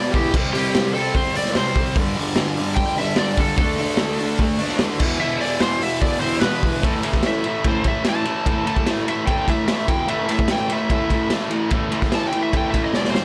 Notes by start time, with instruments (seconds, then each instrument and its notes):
Already playing: distorted electric guitar E2 B2 E3, electric slide guitar D5
0.11 distorted electric guitar E3, electric slide guitar G4, kick, open hi-hat
0.16 distorted electric guitar B2
0.33 distorted electric guitar C3 G3 C4, kick, crash
0.53 distorted electric guitar C3 G3 C4, electric slide guitar G4, open hi-hat
0.75 snare, open hi-hat
0.94 distorted electric guitar G3 C4, electric slide guitar A4, open hi-hat
1.15 electric slide guitar C5, kick, open hi-hat
1.35 distorted electric guitar G3 C4, electric slide guitar D5, open hi-hat
1.45 snare
1.54 distorted electric guitar C3 G3 C4, electric slide guitar C5, snare, open hi-hat
1.74 distorted electric guitar G3 C4, kick, open hi-hat
1.95 distorted electric guitar G2 D3 G3, kick, open hi-hat
2.15 distorted electric guitar G2 D3 G3, open hi-hat
2.36 snare, open hi-hat
2.56 distorted electric guitar D3 G3, open hi-hat
2.76 electric slide guitar G5, kick, open hi-hat
2.97 distorted electric guitar D3 G3, electric slide guitar E5, open hi-hat
3.16 distorted electric guitar G2 D3 G3, electric slide guitar D5, snare, open hi-hat
3.36 distorted electric guitar D3 G3, electric slide guitar A4, kick, open hi-hat
3.57 distorted electric guitar D3 A3 D4, electric slide guitar A4, kick, open hi-hat
3.78 distorted electric guitar D3 A3 D4, open hi-hat
3.97 snare, open hi-hat
4.17 distorted electric guitar A3 D4, open hi-hat
4.39 kick, open hi-hat
4.58 distorted electric guitar A3 D4, open hi-hat
4.68 snare
4.79 distorted electric guitar D3 A3 D4, snare, open hi-hat
4.98 distorted electric guitar E2 B2 E3, kick, crash
5.18 distorted electric guitar E2 B2 E3, electric slide guitar E5
5.38 distorted electric guitar E2 B2 E3, electric slide guitar D5, open hi-hat
5.60 electric slide guitar C5, snare, open hi-hat
5.79 distorted electric guitar B2 E3, electric slide guitar E5, open hi-hat
6.01 electric slide guitar D5, kick, open hi-hat
6.20 distorted electric guitar B2 E3, electric slide guitar C5, open hi-hat
6.40 distorted electric guitar E2 B2 E3, electric slide guitar B4, snare, open hi-hat
6.62 distorted electric guitar B2 E3, kick, open hi-hat
6.81 distorted electric guitar A2 E3 A3, kick, ride
7.03 distorted electric guitar A2 E3 A3, ride
7.13 kick, snare
7.23 distorted electric guitar A2 E3 A3, snare, ride
7.28 electric slide guitar E5
7.44 distorted electric guitar A2 E3 A3, ride
7.64 distorted electric guitar A2 E3 A3, electric slide guitar C5, kick, ride
7.84 distorted electric guitar A2 E3 A3, electric slide guitar E5, kick, ride
8.04 distorted electric guitar A2 E3 A3, snare, ride
8.09 electric slide guitar A5
8.25 distorted electric guitar A2 E3 A3, ride
8.45 distorted electric guitar A2 E3 A3, kick, ride
8.64 distorted electric guitar A2 E3 A3, electric slide guitar A5, ride
8.76 kick
8.86 distorted electric guitar A2 E3 A3, snare, ride
9.06 distorted electric guitar A2 E3 A3, electric slide guitar E5, ride
9.25 distorted electric guitar A2 E3 A3, electric slide guitar G5, kick, ride
9.46 distorted electric guitar A2 E3 A3, electric slide guitar E5, kick, ride
9.66 distorted electric guitar A2 E3 A3, electric slide guitar E5, snare, ride
9.87 distorted electric guitar E2 B2 E3, electric slide guitar G5, kick, ride
10.07 distorted electric guitar A2 E3 A3, electric slide guitar E5, ride
10.29 distorted electric guitar A2 E3 A3, electric slide guitar E5, ride
10.39 kick
10.48 distorted electric guitar A2 E3 A3, electric slide guitar G5, snare, ride
10.70 distorted electric guitar A2 E3 A3, electric slide guitar E5, ride
10.90 distorted electric guitar A2 E3 A3, electric slide guitar E5, kick, ride
11.10 distorted electric guitar A2 E3 A3, kick, ride
11.30 distorted electric guitar A2 E3 A3, snare, ride
11.49 distorted electric guitar A2 E3 A3, ride
11.70 distorted electric guitar A2 E3 A3, kick, ride
11.91 distorted electric guitar A2 E3 A3, ride
12.02 kick, snare
12.11 distorted electric guitar A2 E3 A3, electric slide guitar A5, snare, ride
12.27 electric slide guitar G5
12.32 distorted electric guitar A2 E3 A3, ride
12.43 electric slide guitar E5
12.52 distorted electric guitar A2 E3 A3, kick, ride
12.56 electric slide guitar G5
12.71 distorted electric guitar A2 E3 A3, electric slide guitar E5, kick, ride
12.85 electric slide guitar D#5
12.93 distorted electric guitar E2 B2 E3, electric slide guitar D5, snare
13.05 snare
13.10 distorted electric guitar G2, electric slide guitar C5
13.14 distorted electric guitar D3 G3, snare